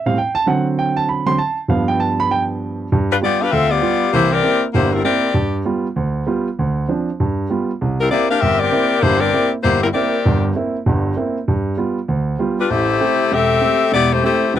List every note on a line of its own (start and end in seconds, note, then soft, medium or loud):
0.06 0.15 A2 soft
0.06 0.15 G3 soft
0.06 0.16 C4 medium
0.06 0.16 F5 medium
0.18 0.35 G5 medium
0.35 0.46 A5 loud
0.46 1.25 D3 medium
0.46 1.25 F#3 soft
0.46 1.25 C4 medium
0.46 0.65 F#5 medium
0.79 0.96 G5 medium
0.97 1.07 A5 medium
1.09 1.27 B5 medium
1.26 1.36 D3 soft
1.26 1.37 F#3 soft
1.26 1.37 C4 medium
1.26 1.38 C6 medium
1.38 1.57 A5 medium
1.68 2.87 G2 medium
1.68 2.87 F3 soft
1.68 2.87 B3 medium
1.68 1.88 F5 medium
1.88 1.99 G5 medium
2.00 2.18 A5 medium
2.20 2.30 B5 loud
2.31 2.42 G5 medium
2.92 3.18 G2 medium
3.11 3.15 G3 medium
3.11 3.16 D4 medium
3.11 3.16 F4 medium
3.11 3.16 B4 loud
3.21 3.41 G3 soft
3.21 3.42 B3 soft
3.21 3.40 B3 medium
3.21 3.42 F4 medium
3.21 3.40 F4 medium
3.21 3.40 G4 medium
3.21 3.40 D5 loud
3.41 3.52 D4 medium
3.41 3.52 G4 medium
3.41 3.53 B4 medium
3.41 3.52 F5 loud
3.51 3.78 D2 medium
3.51 3.70 C4 medium
3.51 3.68 F4 medium
3.51 3.71 A4 medium
3.51 3.70 E5 loud
3.69 4.12 B3 medium
3.69 4.12 F4 medium
3.69 4.11 G4 medium
3.69 4.12 D5 loud
3.82 4.02 G3 medium
3.82 4.02 B3 soft
3.82 4.03 F4 medium
4.12 4.39 C2 medium
4.12 4.39 E3 medium
4.12 4.31 A#3 medium
4.12 4.31 E4 loud
4.12 4.30 G4 loud
4.12 4.30 C5 loud
4.32 4.63 C4 medium
4.32 4.63 G4 medium
4.32 4.63 A#4 medium
4.32 4.63 D5 loud
4.43 4.64 A#3 medium
4.43 4.64 C4 soft
4.43 4.64 E4 medium
4.73 5.01 G1 medium
4.73 5.00 G2 medium
4.73 4.92 A#3 medium
4.73 4.91 E4 medium
4.73 4.92 G4 medium
4.73 4.92 C5 loud
4.92 5.04 G3 medium
4.92 5.03 C4 medium
4.92 5.04 E4 medium
4.92 5.03 A#4 medium
5.04 5.25 A#3 medium
5.04 5.33 C4 medium
5.04 5.25 C4 medium
5.04 5.25 E4 medium
5.04 5.62 G4 medium
5.04 5.33 A#4 medium
5.04 5.61 D5 medium
5.34 5.61 G2 medium
5.65 5.86 G3 soft
5.65 5.86 B3 medium
5.65 5.86 F4 medium
5.96 6.22 D2 medium
6.27 6.47 G3 medium
6.27 6.47 B3 medium
6.27 6.47 F4 medium
6.59 6.84 D2 medium
6.88 7.08 F3 medium
6.88 7.09 C4 soft
6.88 7.09 D4 medium
7.20 7.46 G2 medium
7.50 7.70 G3 medium
7.50 7.70 B3 soft
7.50 7.70 F4 medium
7.81 8.07 C2 medium
8.00 8.10 G3 medium
8.00 8.10 C4 medium
8.00 8.10 E4 medium
8.00 8.10 A#4 loud
8.11 8.31 A#3 medium
8.11 8.29 A#3 medium
8.11 8.31 C4 soft
8.11 8.28 E4 medium
8.11 8.32 E4 medium
8.11 8.29 G4 medium
8.11 8.29 D5 loud
8.30 8.41 D4 medium
8.30 8.40 G4 medium
8.30 8.40 A#4 medium
8.30 8.40 F5 loud
8.41 8.68 G1 medium
8.41 8.59 C4 loud
8.41 8.59 G4 loud
8.41 8.59 A#4 medium
8.41 8.60 E5 loud
8.60 9.02 C4 loud
8.60 9.00 G4 medium
8.60 9.02 A#4 medium
8.60 9.02 D5 loud
8.72 8.92 A#3 medium
8.72 8.92 C4 medium
8.72 8.92 E4 medium
9.01 9.29 G1 medium
9.01 9.29 G2 medium
9.01 9.21 A#3 medium
9.01 9.21 E4 loud
9.01 9.19 G4 medium
9.01 9.21 C5 loud
9.19 9.51 C4 loud
9.19 9.51 G4 medium
9.19 9.51 A#4 medium
9.19 9.51 D5 loud
9.33 9.53 A#3 medium
9.33 9.54 C4 soft
9.33 9.54 E4 medium
9.63 9.90 G1 medium
9.63 9.81 A#3 medium
9.63 9.81 E4 medium
9.63 9.81 G4 medium
9.63 9.81 C5 loud
9.82 9.88 G3 medium
9.82 9.87 C4 medium
9.82 9.87 E4 medium
9.82 9.87 A#4 medium
9.93 10.14 A#3 medium
9.93 10.51 C4 medium
9.93 10.15 C4 medium
9.93 10.15 E4 medium
9.93 10.51 G4 medium
9.93 10.51 A#4 medium
9.93 10.51 D5 medium
10.25 10.51 G1 medium
10.25 10.51 G2 medium
10.56 10.76 A#3 medium
10.56 10.76 C4 soft
10.56 10.76 E4 medium
10.86 11.12 G1 medium
10.86 11.12 G2 medium
11.17 11.37 A#3 medium
11.17 11.37 C4 medium
11.17 11.37 E4 medium
11.48 11.74 G2 medium
11.77 11.98 G3 medium
11.77 11.98 B3 soft
11.77 11.98 F4 medium
12.08 12.34 D2 medium
12.39 12.59 G3 medium
12.39 12.59 B3 soft
12.39 12.59 F4 medium
12.59 12.69 G3 medium
12.59 12.69 D4 medium
12.59 12.69 F4 medium
12.59 12.69 B4 medium
12.70 12.96 A1 medium
12.70 13.31 A3 loud
12.70 13.31 E4 loud
12.70 13.31 G4 loud
12.70 13.31 C5 loud
13.00 13.20 A3 medium
13.00 13.20 C4 soft
13.00 13.21 G4 medium
13.31 13.57 E1 medium
13.31 13.93 C4 loud
13.31 13.92 G4 loud
13.31 13.93 A4 loud
13.31 13.93 E5 loud
13.61 13.81 A3 medium
13.61 13.81 C4 soft
13.61 13.82 G4 medium
13.92 14.18 E1 medium
13.92 14.10 B3 loud
13.92 14.10 E4 loud
13.92 14.10 G4 medium
13.92 14.10 D5 loud
14.12 14.23 A3 medium
14.12 14.23 E4 medium
14.12 14.23 G4 medium
14.12 14.23 C5 loud
14.23 14.43 A3 medium
14.23 14.51 A3 medium
14.23 14.43 C4 soft
14.23 14.52 E4 medium
14.23 14.51 G4 medium
14.23 14.43 G4 medium
14.23 14.52 C5 loud
14.54 14.59 E1 medium
14.54 14.59 G3 medium
14.54 14.59 C4 medium
14.54 14.59 E4 medium
14.54 14.59 B4 loud